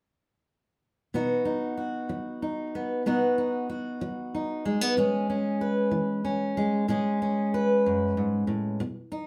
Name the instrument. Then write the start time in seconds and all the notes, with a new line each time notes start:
steel-string acoustic guitar
1.14 B2 B3 D#4 F#4
1.45 D#4
1.77 F#4
2.09 F#3
2.42 D#4
2.75 B3
3.06 B2 B3 D#4 F#4
3.38 D#4
3.69 F#4
4.01 F#3
4.35 D#4
4.65 G#3
4.81 B3
4.97 A2 G#3 C#4 G#4
5.30 C#4
5.61 B4
5.91 E3
6.25 C#4
6.57 G#3
6.88 A2 G#3 C#4 G#4
7.22 C#4
7.54 B4
7.86 F#2
8.17 G#2
8.47 A2
8.80 B2
9.12 D#4